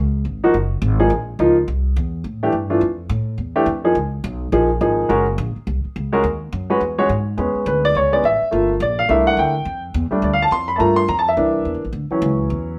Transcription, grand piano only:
0.44 F3 A#3 D#4 F#4
0.99 F3 A#3 D#4 G#4
1.40 F3 A#3 D#4 F4
2.43 E3 A3 D4 G4
2.70 E3 A3 D4 F4
3.56 E3 A3 D4 G4
3.84 F3 A#3 D#4 G#4
4.52 F3 A#3 D#4 G#4
4.81 F3 A#3 D#4 G#4
5.09 G#3 C#4 F#4 A#4
6.13 G#3 C#4 F#4 A#4
6.70 G#3 C#4 F#4 B4
6.98 G#3 C#4 F#4 C#5
7.37 G#3 B3 C#4
7.67 B4
7.85 D5
7.97 C#5
8.12 G#3 B3 C#4 D5
8.25 E5
8.51 A3 A#3 F4
8.82 D5
8.99 F5
9.09 A3 A#3 D4 E4 E5
9.27 F#5
9.39 G5
10.11 G3 A3 D4
10.24 D5
10.33 F5
10.42 A5
10.52 C6
10.68 B5
10.76 A3 A#3 F4 A5
10.80 A#5
10.96 C6
11.09 A#5
11.19 A5
11.29 E5
11.36 E3 A#3 D4
12.11 E3 F#3 C#4

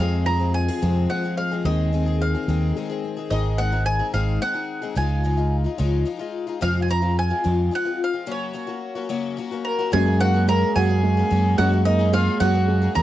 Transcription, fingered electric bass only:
0.00 F2
0.83 F2
1.65 D#2
2.48 D#2
3.31 G#1
4.14 G#1
4.96 C#2
5.80 C#2
6.62 F2
7.46 F2
9.93 F#2
10.76 F#2
11.31 F#2
11.59 F#2
12.41 F#2
12.97 E2

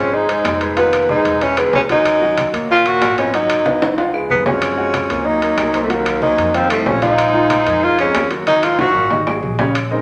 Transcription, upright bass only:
Already playing: G#1
0.44 F1
1.25 E1
1.73 D#2
2.53 D#2
3.01 G#1
3.82 C#2
4.30 F#2
5.10 C#2
5.58 C2
6.38 F2
6.86 A#1
7.66 F2
8.14 D#2
8.95 G#1
9.43 A#1

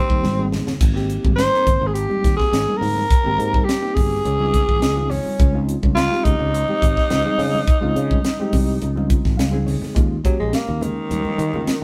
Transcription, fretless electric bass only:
0.10 D#2
0.23 G#1
0.67 muted fretless electric bass stroke
0.81 G#1
1.25 G#1
1.67 G#1
1.81 G#1
2.25 D#2
2.52 G#1
2.82 G#2
3.26 G#1
3.38 G#2
3.97 G1
4.25 C#2
4.69 G#1
4.82 C#2
5.27 muted fretless electric bass stroke
5.40 C#2
5.83 C#2
6.25 C#2
6.39 C#2
6.83 G#1
7.11 C#2
7.38 C#3
7.82 C#2
7.96 C#3
8.54 C2
8.82 C#2
9.25 G#1
9.39 C#2
9.83 muted fretless electric bass stroke
9.97 D#2
10.40 A#1
10.69 D#2
11.11 D#2
11.26 muted fretless electric bass stroke
11.38 D#3
11.67 muted fretless electric bass stroke

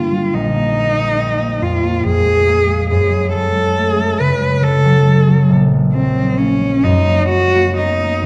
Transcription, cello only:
Already playing: F4
0.34 D#4
1.62 F4
2.04 G#4
2.90 G#4
3.33 A4
4.20 B4
4.63 A4
5.93 C4
6.37 C#4
6.84 D#4
7.29 F#4
7.78 D#4

